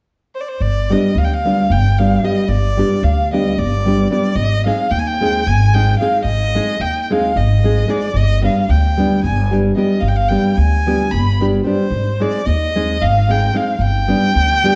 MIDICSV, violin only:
0, 0, Header, 1, 2, 480
1, 0, Start_track
1, 0, Tempo, 538117
1, 537, Time_signature, 7, 3, 24, 8
1, 13159, End_track
2, 0, Start_track
2, 0, Title_t, "Violin"
2, 0, Program_c, 0, 40
2, 310, Note_on_c, 0, 72, 67
2, 365, Note_on_c, 0, 74, 52
2, 378, Note_off_c, 0, 72, 0
2, 430, Note_on_c, 0, 72, 73
2, 443, Note_off_c, 0, 74, 0
2, 546, Note_on_c, 0, 74, 83
2, 560, Note_off_c, 0, 72, 0
2, 821, Note_on_c, 0, 75, 76
2, 834, Note_off_c, 0, 74, 0
2, 1054, Note_on_c, 0, 77, 84
2, 1068, Note_off_c, 0, 75, 0
2, 1111, Note_on_c, 0, 79, 68
2, 1124, Note_off_c, 0, 77, 0
2, 1192, Note_on_c, 0, 77, 88
2, 1205, Note_off_c, 0, 79, 0
2, 1533, Note_on_c, 0, 79, 86
2, 1546, Note_off_c, 0, 77, 0
2, 1772, Note_on_c, 0, 77, 83
2, 1786, Note_off_c, 0, 79, 0
2, 2003, Note_on_c, 0, 75, 73
2, 2016, Note_off_c, 0, 77, 0
2, 2217, Note_on_c, 0, 74, 90
2, 2230, Note_off_c, 0, 75, 0
2, 2711, Note_on_c, 0, 77, 82
2, 2725, Note_off_c, 0, 74, 0
2, 2972, Note_off_c, 0, 77, 0
2, 2978, Note_on_c, 0, 75, 76
2, 3198, Note_on_c, 0, 74, 91
2, 3211, Note_off_c, 0, 75, 0
2, 3669, Note_off_c, 0, 74, 0
2, 3682, Note_on_c, 0, 74, 83
2, 3884, Note_on_c, 0, 75, 104
2, 3898, Note_off_c, 0, 74, 0
2, 4154, Note_off_c, 0, 75, 0
2, 4160, Note_on_c, 0, 77, 87
2, 4379, Note_on_c, 0, 79, 95
2, 4392, Note_off_c, 0, 77, 0
2, 4454, Note_on_c, 0, 80, 72
2, 4467, Note_off_c, 0, 79, 0
2, 4520, Note_on_c, 0, 79, 104
2, 4534, Note_off_c, 0, 80, 0
2, 4882, Note_on_c, 0, 80, 99
2, 4895, Note_off_c, 0, 79, 0
2, 5121, Note_on_c, 0, 79, 92
2, 5135, Note_off_c, 0, 80, 0
2, 5341, Note_off_c, 0, 79, 0
2, 5346, Note_on_c, 0, 77, 79
2, 5554, Note_off_c, 0, 77, 0
2, 5573, Note_on_c, 0, 75, 102
2, 6078, Note_on_c, 0, 79, 93
2, 6091, Note_off_c, 0, 75, 0
2, 6276, Note_off_c, 0, 79, 0
2, 6276, Note_on_c, 0, 79, 54
2, 6348, Note_on_c, 0, 77, 81
2, 6361, Note_off_c, 0, 79, 0
2, 6576, Note_on_c, 0, 75, 76
2, 6590, Note_off_c, 0, 77, 0
2, 7046, Note_on_c, 0, 74, 82
2, 7059, Note_off_c, 0, 75, 0
2, 7282, Note_on_c, 0, 75, 102
2, 7296, Note_off_c, 0, 74, 0
2, 7532, Note_off_c, 0, 75, 0
2, 7538, Note_on_c, 0, 77, 75
2, 7763, Note_on_c, 0, 79, 81
2, 7777, Note_off_c, 0, 77, 0
2, 8243, Note_off_c, 0, 79, 0
2, 8248, Note_on_c, 0, 80, 70
2, 8477, Note_off_c, 0, 80, 0
2, 8710, Note_on_c, 0, 75, 68
2, 8923, Note_on_c, 0, 77, 75
2, 8937, Note_off_c, 0, 75, 0
2, 8990, Note_on_c, 0, 79, 69
2, 9003, Note_off_c, 0, 77, 0
2, 9065, Note_on_c, 0, 77, 93
2, 9079, Note_off_c, 0, 79, 0
2, 9176, Note_on_c, 0, 79, 78
2, 9189, Note_off_c, 0, 77, 0
2, 9419, Note_on_c, 0, 80, 93
2, 9432, Note_off_c, 0, 79, 0
2, 9911, Note_on_c, 0, 83, 94
2, 9925, Note_off_c, 0, 80, 0
2, 10168, Note_off_c, 0, 83, 0
2, 10396, Note_on_c, 0, 72, 78
2, 10896, Note_on_c, 0, 74, 81
2, 10909, Note_off_c, 0, 72, 0
2, 11117, Note_on_c, 0, 75, 97
2, 11130, Note_off_c, 0, 74, 0
2, 11615, Note_on_c, 0, 77, 98
2, 11629, Note_off_c, 0, 75, 0
2, 11869, Note_on_c, 0, 79, 89
2, 11883, Note_off_c, 0, 77, 0
2, 12100, Note_on_c, 0, 77, 85
2, 12114, Note_off_c, 0, 79, 0
2, 12319, Note_on_c, 0, 79, 121
2, 12333, Note_off_c, 0, 77, 0
2, 13159, Note_off_c, 0, 79, 0
2, 13159, End_track
0, 0, End_of_file